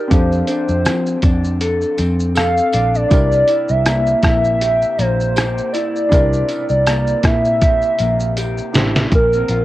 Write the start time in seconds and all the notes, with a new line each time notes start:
Already playing: D#4 G4 A#4 D5
0.08 F2 F3 C4 D4 G4 C5, kick, closed hi-hat, tambourine, shaker
0.13 A4
0.32 shaker
0.47 D4 C5, closed hi-hat, tambourine, shaker
0.68 F2, shaker
0.85 F3 C4, cross-stick, closed hi-hat, tambourine, shaker
1.06 shaker
1.22 F2 D4, kick, closed hi-hat, tambourine, shaker
1.44 shaker
1.61 A4, closed hi-hat, tambourine, shaker
1.81 shaker
1.98 F2 C4, closed hi-hat, tambourine, shaker
2.20 shaker
2.35 A4 F5, cross-stick, closed hi-hat, tambourine, shaker
2.57 shaker
2.73 A#1 D4, closed hi-hat, tambourine, shaker
2.95 D5, shaker
3.08 C2 C3 D4 E4 G4, kick, closed hi-hat, tambourine, shaker
3.14 A#4
3.32 shaker
3.48 E4, closed hi-hat, tambourine, shaker
3.68 C2 E5, shaker
3.86 A#3, cross-stick, closed hi-hat, tambourine, shaker
4.06 shaker
4.23 A#1 E4 E5, kick, cross-stick, closed hi-hat, tambourine, shaker
4.45 shaker
4.61 G4, closed hi-hat, shaker
4.82 shaker
4.98 A#1 A#3 C5, closed hi-hat, tambourine, shaker
5.20 shaker
5.36 G4, cross-stick, closed hi-hat, tambourine, shaker
5.58 shaker
5.73 E4 D5, closed hi-hat, tambourine, shaker
5.96 shaker
6.09 C2 C3 D4 E4 G4, kick, closed hi-hat, tambourine, shaker
6.14 A#4
6.33 shaker
6.49 E4, closed hi-hat, tambourine, shaker
6.69 C2 D5, shaker
6.86 A#3, cross-stick, closed hi-hat, tambourine, shaker
7.07 shaker
7.23 A#2 E4 E5, kick, cross-stick, closed hi-hat, tambourine, shaker
7.45 shaker
7.62 G4, kick, closed hi-hat, shaker
7.82 shaker
7.99 A#1 A#3, closed hi-hat, tambourine, shaker
8.20 shaker
8.37 G4, closed hi-hat, tambourine, shaker
8.58 shaker
8.73 A1 D4 E4 G4 C5, snare, closed hi-hat, tambourine, shaker
8.96 snare, shaker
9.12 A#1 A#2 A#4, kick, closed hi-hat, shaker
9.33 C4, shaker
9.48 A#1 F4, closed hi-hat, shaker